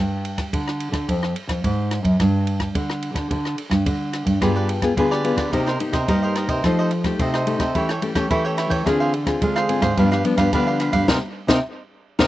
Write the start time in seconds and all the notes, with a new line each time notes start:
Already playing: G2
0.25 ride
0.38 kick, cross-stick, ride
0.53 D3, kick, ride
0.68 cross-stick
0.80 ride
0.92 D3, kick, cross-stick, ride
1.09 F2, kick, ride
1.23 cross-stick
1.36 ride
1.47 F2, kick, cross-stick, ride
1.64 G#2, kick, ride
1.91 cross-stick, ride
2.03 F#2, kick, ride
2.20 G2, kick, cross-stick, ride
2.47 ride
2.60 kick, cross-stick, ride
2.75 D3, kick, ride
2.90 cross-stick
3.02 ride
3.14 D3, kick, cross-stick, ride
3.31 D3, kick, ride
3.45 cross-stick
3.58 ride
3.70 G2, kick, cross-stick, ride
3.86 D3, kick, ride
4.13 cross-stick, ride
4.25 G2, kick, ride
4.41 G2 G3 B3 F4 G4 G#4 B4 D5, kick, cross-stick, ride
4.56 G4 B4 D5
4.69 muted cavaquinho stroke, ride
4.82 B3 F4 G#4, kick, cross-stick, ride
4.97 D3 B3 F4 G4 G#4 B4 D5, kick, ride
5.11 G4 B4 D5, cross-stick
5.24 B3 F4 G#4, ride
5.36 D3 G4 B4 D5, kick, cross-stick, ride
5.52 C3 A#3 D#4 G4 A#4 C5 D#5, kick, ride
5.66 A#4 C5 D#5, cross-stick
5.79 A#3 D#4 G4, muted cavaquinho stroke, ride
5.92 C3 A#4 C5 D#5, kick, cross-stick, ride
6.08 G2 G3 A#3 D#4 G4 A#4 C5 D#5, kick, ride
6.23 A#4 C5 D#5
6.35 D#4 A#4 C5 D#5, cross-stick, ride
6.47 C3 A#4 C5 D#5, kick, ride
6.64 F3 A3 D#4 F4 G4 A4 C5 D#5, kick, cross-stick, ride
6.79 A4 C5 D#5
6.91 muted cavaquinho stroke, ride
7.04 A3 D#4 G4, kick, cross-stick, ride
7.19 C3 F4 A4 C5 D#5, kick, ride
7.34 A4 C5 D#5, cross-stick
7.46 A3 D#4 G4, ride
7.58 C3 A4 C5 D#5, kick, cross-stick, ride
7.75 E3 A3 C#4 E4 G4 A4 C#5 G5, kick, ride
7.89 A4 C#5 G5, cross-stick
8.02 A3 C#4 G4, muted cavaquinho stroke, ride
8.14 E3 A3 C#4 G4 A4 C#5 G5, kick, cross-stick, ride
8.30 E3 A3 C#4 E4 G4 A4 C#5 G5, kick, ride
8.45 A4 C#5 G5
8.57 E4 A4 C#5 G5, cross-stick, ride
8.70 E3 A4 C#5 G5, kick, ride
8.86 D3 C4 D4 F4 G#4 C5 F5, kick, cross-stick, ride
9.00 G#4 C5 F5
9.13 muted cavaquinho stroke, ride
9.26 C4 F4 G#4, kick, cross-stick, ride
9.41 D3 G#3 D4 G#4 C5 F5, kick, ride
9.56 G#4 C5 F5, cross-stick
9.68 C4 F4 G#4, ride
9.81 G#2 G#4 C5 F5, kick, cross-stick, ride
9.97 G2 F3 B3 D4 G4 B4 F5, kick, ride
10.12 G4 B4 F5, cross-stick
10.24 F3 B3 D4, muted cavaquinho stroke, ride
10.36 G2 F3 B3 D4 G4 B4 F5, kick, cross-stick, ride
10.53 D3 F3 B3 D4 G4 B4 F5, kick, ride
10.67 G4 B4 F5
10.80 D4 G4 B4 F5, cross-stick, ride
10.92 G2 G4 B4 F5, kick, ride
11.08 C3 A#3 C4 D#4 A#4 C5 D#5, kick, snare
11.47 C3 A#3 C4 D#4 A#4 C5 D#5, kick, snare
12.19 C3 A#3 C4 D#4 A#4 C5 D#5, kick, snare